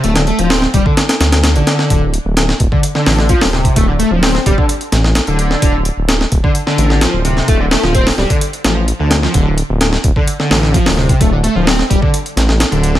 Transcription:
<<
  \new Staff \with { instrumentName = "Analog synth lead" } { \clef bass \time 4/4 \key d \minor \tempo 4 = 129 a16 d16 a16 f16 c'16 r16 g16 d16 r4 r16 d8. | d16 r4. d16 r16 d8. f16 r16 c8 | a16 d16 a16 f16 c'16 r16 g16 d16 r4 r16 d8. | d16 r4. d16 r16 d8. f16 r16 c8 |
a16 d16 a16 f16 c'16 r16 g16 d16 r8 f16 r8 d16 r16 f16 | d16 r4. d16 r16 d8. f16 r16 c8 | a16 d16 a16 f16 c'16 r16 g16 d16 r4 r16 d8. | }
  \new Staff \with { instrumentName = "Detuned saw bass" } { \clef bass \time 4/4 \key d \minor d,,8 r16 d,,8 r16 d,,16 r8. d,8. a,,16 r8 | d,,8 r16 d,,8 r16 d,,16 r8. a,,8 r16 d,,8 r16 | d,,8 r16 d,,8 r16 d,,16 r8. a,,8 r16 d,,8 r16 | d,,8 r16 d,,8 r16 d,,16 r8. a,,8 r16 d,,8 r16 |
d,,8 r16 d,,8 r16 d,,16 r8. a,,8 r16 d,8 r16 | d,,8 r16 d,,8 r16 d,,16 r8. a,,8 r16 d,,8 r16 | d,,8 r16 d,,8 r16 d,,16 r8. a,,8 r16 d,,8 r16 | }
  \new DrumStaff \with { instrumentName = "Drums" } \drummode { \time 4/4 hh16 <hh sn>16 hh16 hh16 <hho sn>16 sn16 <hh bd>16 bd16 <hh sn>16 <hh sn>16 <hh sn>16 <hh sn>16 <hh sn>16 hh16 <hh sn>16 sn16 | <hh bd>8 hh8 <hh sn>16 sn16 <hh bd>16 bd16 hh16 sn16 <hho sn>16 sn16 <hh bd>16 <hho sn>16 sn16 <hh bd>16 | <hh bd>8 hh8 <hho sn>16 sn16 <hh bd>16 bd16 hh16 hh16 <hh sn>16 sn16 <hh sn>16 hh16 hh16 sn16 | <hh bd>8 hh8 <hh sn>16 sn16 <hh bd>16 bd16 hh16 sn16 hh16 sn16 <hh sn>8 hh16 sn16 |
<hh bd>8 <hho sn>16 sn16 <hh bd>16 <hho sn>16 sn16 <hh bd>16 hh16 hh16 <hh sn>8 hh8 <hh sn>16 sn16 | <hh bd>8 hh8 <hh sn>16 sn16 <hh bd>16 bd16 hh16 sn16 <hho sn>16 sn16 <hh bd>16 <hho sn>16 sn16 <hh bd>16 | <hh bd>8 hh8 <hho sn>16 sn16 <hh bd>16 bd16 hh16 hh16 <hh sn>16 sn16 <hh sn>16 hh16 hh16 sn16 | }
>>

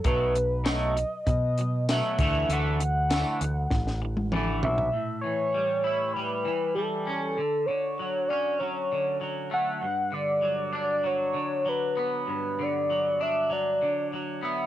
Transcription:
<<
  \new Staff \with { instrumentName = "Analog synth lead" } { \time 4/4 \key g \lydian \tempo 4 = 98 b'4 dis''4 dis''4 e''4 | fis''8 fis''2 r4 e''8~ | e''8 cis''4. b'4 a'4 | a'8 cis''4 d''8 cis''4 r8 fis''8~ |
fis''8 d''4. cis''4 b'4 | b'8 d''4 e''8 d''4 r8 e''8 | }
  \new Staff \with { instrumentName = "Clean electric guitar" } { \clef bass \time 4/4 \key g \lydian <b, fis a>8 <b, fis>8 <b, fis a>8 <b, fis>8 <b, fis>8 <b, fis>8 <b, fis a>8 <d e a>8 | <d e a>8 <d e>8 <d e a>8 <d e>8 <d e>8 <d e>8 <d e a>8 <d e>8 | a,8 e8 g8 e'8 g8 e8 g8 cis'8 | d8 d8 fis8 cis'8 fis8 d8 fis8 a8 |
g,8 d8 fis8 d'8 fis8 d8 fis8 b8 | g,8 d8 fis8 d'8 fis8 d8 fis8 b8 | }
  \new Staff \with { instrumentName = "Fingered electric bass" } { \clef bass \time 4/4 \key g \lydian b,,2 b,4. d,8 | d,4. d,8 a,,4. b,,8 | r1 | r1 |
r1 | r1 | }
  \new DrumStaff \with { instrumentName = "Drums" } \drummode { \time 4/4 <hh bd>8 hh8 <hh sn tamb>8 hh8 <hh bd>8 hh8 <hh sn tamb>8 <hh bd>8 | hh8 hh8 <hh sn tamb>8 hh8 <bd sn>16 sn8 tommh16 toml8 tomfh16 tomfh16 | r4 r4 r4 r4 | r4 r4 r4 r4 |
r4 r4 r4 r4 | r4 r4 r4 r4 | }
>>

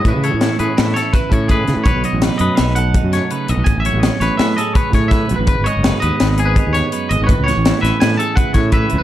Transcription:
<<
  \new Staff \with { instrumentName = "Clean electric guitar" } { \time 5/4 \key a \lydian \tempo 4 = 166 b'8 a'4 gis'8 a'8 cis''8 b'8 a'8 gis'8. r16 | cis''4 r8 dis''8 e''8 fis''2~ fis''8 | gis''8 e''8 dis''8 cis''8 e''8 dis''8 cis''4 e''8. b'16~ | b'8 cis''4 dis''4~ dis''16 b'8. cis''4 dis''16. cis''32 |
b'8 cis''4 e''8 gis''8 a''8 fis''8 e''8 e''8. b'16 | }
  \new Staff \with { instrumentName = "Clean electric guitar" } { \time 5/4 \key a \lydian dis''8 cis''4 b'4 a'8 b'8 cis''8 b'4 | b'8 dis''8 b'8 b'4 r4 cis''8 b'8 dis''8~ | dis''8 cis''4 b'4 a'8 b'8 cis''8 b'4 | b'8 dis''8 b'8 b'4 gis'4 cis''8 b'8 dis''8~ |
dis''8 cis''4 b'4 a'8 b'8 cis''8 b'4 | }
  \new Staff \with { instrumentName = "Clean electric guitar" } { \time 5/4 \key a \lydian << { <e cis' e'>4 e'8 cis'8 e'8 e'8 e'8 cis'4. | r4 dis'8 a8 dis'8 a'8 dis'8 a4.~ | a4 cis'8 a8 cis'8 gis'8 cis'8 a4. | r4 dis'8 b8 dis'8 gis'8 dis'8 b4. |
r4 e'8 cis'8 e'8 gis'8 e'8 cis'4. | } \\ { a,8 e2.~ e8 gis,8 a,8 | b,8 fis2.~ fis8 cis8 b,8 | a,8 fis2.~ fis8 a,8 fis8 | gis,8 gis2.~ gis8 fis,8 gis,8 |
a,8 e2.~ e8 a,8 e8 | } >> }
  \new Staff \with { instrumentName = "Fingered electric bass" } { \clef bass \time 5/4 \key a \lydian a,16 cis8 a,8 r16 a,16 r16 a,8 r4 a,4 cis16 a,16 | b,,16 b,,16 r16 a,,8 r16 fis,16 r16 b,,4~ b,,16 fis,8 r8. b,,16 b,,16 | a,,16 a,,8 a,,8 r16 a,,16 r16 a,8 r4 a,4 b,,16 a,,16 | gis,,16 gis,,16 r16 fis,,8 r16 dis,16 r16 gis,,4~ gis,,16 dis,8 r8. gis,,16 gis,,16 |
a,,16 cis,8 a,,8 r16 a,,16 r16 a,8 r4 a,4 cis,16 r16 | }
  \new DrumStaff \with { instrumentName = "Drums" } \drummode { \time 5/4 <hh bd>8 hh8 <hh sn>8 hh8 <hh sn>8 <hh sn>8 <hh bd sn>8 <hh bd>8 <hh bd>8 <hh sn>8 | <hh bd>8 hh8 <hh sn>8 hh8 <hh sn>8 hh8 <hh bd>8 <hh sn>8 hh8 hh8 | <hh bd>8 hh8 <hh sn>8 <hh sn>8 <hh sn>8 hh8 <hh bd>8 <hh bd sn>8 <hh bd sn>8 hh8 | <hh bd>8 hh8 <hh sn>8 hh8 <hh sn>8 hh8 <hh bd>8 <hh sn>8 hh8 hh8 |
<hh bd>8 <hh sn>8 <hh sn>8 <hh sn>8 <hh sn>8 hh8 <hh bd>8 <hh bd sn>8 <hh bd>8 hh8 | }
>>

